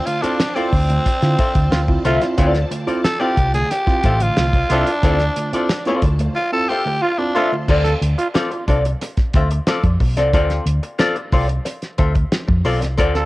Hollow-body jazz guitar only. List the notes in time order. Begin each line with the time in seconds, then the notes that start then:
0.06 muted hollow-body jazz guitar stroke
0.22 C4 F4 A4 D5
0.39 muted hollow-body jazz guitar stroke
0.56 C4 F4 A4 D5
0.71 muted hollow-body jazz guitar stroke
0.89 muted hollow-body jazz guitar stroke
1.06 muted hollow-body jazz guitar stroke
1.38 C4 F4 A4 E5
1.55 muted hollow-body jazz guitar stroke
1.88 muted hollow-body jazz guitar stroke
2.05 C4 F4 A4 E5
2.22 muted hollow-body jazz guitar stroke
2.38 C4 F4 A4 D5
2.71 muted hollow-body jazz guitar stroke
2.87 C4 F4 A4 D5
3.04 muted hollow-body jazz guitar stroke
3.20 C4 F4 A4 D5
3.38 muted hollow-body jazz guitar stroke
3.54 muted hollow-body jazz guitar stroke
3.71 muted hollow-body jazz guitar stroke
4.05 C4 F4 A4 E5
4.21 muted hollow-body jazz guitar stroke
4.55 muted hollow-body jazz guitar stroke
4.71 C4 F4 A4 E5
4.88 muted hollow-body jazz guitar stroke
5.04 C4 F4 A4 D5
5.37 muted hollow-body jazz guitar stroke
5.54 C4 F4 A4 D5
5.71 muted hollow-body jazz guitar stroke
5.87 C4 F4 A4 D5
6.03 muted hollow-body jazz guitar stroke
6.21 muted hollow-body jazz guitar stroke
6.37 muted hollow-body jazz guitar stroke
6.70 C4 F4 A4 E5
6.87 muted hollow-body jazz guitar stroke
7.19 muted hollow-body jazz guitar stroke
7.36 C4 F4 A4 E5
7.53 muted hollow-body jazz guitar stroke
7.69 C4 F4 A4 D5
8.18 muted hollow-body jazz guitar stroke
8.34 C4 F4 A4 D5
8.51 muted hollow-body jazz guitar stroke
8.68 C4 F4 A4 D5
8.85 muted hollow-body jazz guitar stroke
9.01 muted hollow-body jazz guitar stroke
9.35 C4 F4 A4 E5
9.51 muted hollow-body jazz guitar stroke
9.67 C4 F4 A4 D5
10.00 muted hollow-body jazz guitar stroke
10.17 C4 F4 A4 D5
10.33 C4 F4 A4 D5
10.83 muted hollow-body jazz guitar stroke
10.99 C4 F4 A4 D5
11.16 muted hollow-body jazz guitar stroke
11.33 C4 F4 A4 D5
11.48 muted hollow-body jazz guitar stroke
11.65 muted hollow-body jazz guitar stroke
11.98 C4 F4 A4 E5
12.15 muted hollow-body jazz guitar stroke
12.48 muted hollow-body jazz guitar stroke
12.65 C4 F4 A4 D5
12.81 muted hollow-body jazz guitar stroke
12.97 C4 F4 A4 D5